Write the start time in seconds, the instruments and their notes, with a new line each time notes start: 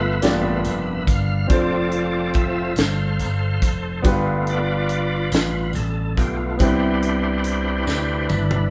Already playing: slap bass G1, tonewheel organ A3 B3 F4 B4 E5, grand piano B3 D4 F4 G4 B4
0.21 slap bass A1, grand piano G2 A#3 D4 F4 G4 D5, tonewheel organ A3 B3 F4, snare, closed hi-hat, tambourine
0.28 grand piano B3
0.64 slap bass F1, closed hi-hat, tambourine
1.07 slap bass G1, tonewheel organ F5, kick, closed hi-hat, tambourine
1.47 slap bass F1, tonewheel organ F3 C4 F4 A4 D5, grand piano C4 D4 F4, kick, closed hi-hat, tambourine
1.51 grand piano A4 C5
1.92 closed hi-hat
2.34 tonewheel organ E5, kick, closed hi-hat
2.76 slap bass G1, tonewheel organ A4 C5 F5, snare, closed hi-hat, tambourine
3.19 slap bass G1, closed hi-hat, tambourine
3.62 slap bass F1, kick, closed hi-hat, tambourine
4.02 slap bass G1, grand piano G2 B3 D4 F4 G4, tonewheel organ A3 B3 F4, kick, closed hi-hat, tambourine
4.07 grand piano B4
4.47 tonewheel organ F4 B4 D5, closed hi-hat
4.89 closed hi-hat
5.32 slap bass A1, tonewheel organ B4, snare, closed hi-hat, tambourine
5.73 slap bass A1, tonewheel organ A4, closed hi-hat, tambourine
6.17 slap bass B1, tonewheel organ A3 B3 F4 G4, kick, closed hi-hat, tambourine
6.57 slap bass C2, grand piano C3 B3 C4 E4 G4, tonewheel organ D4 E4 G4 B4 C5, kick, closed hi-hat, tambourine
6.63 grand piano B4
7.02 closed hi-hat
7.44 closed hi-hat
7.87 slap bass D2, snare, tambourine
8.29 slap bass G1, high tom, tambourine
8.51 mid tom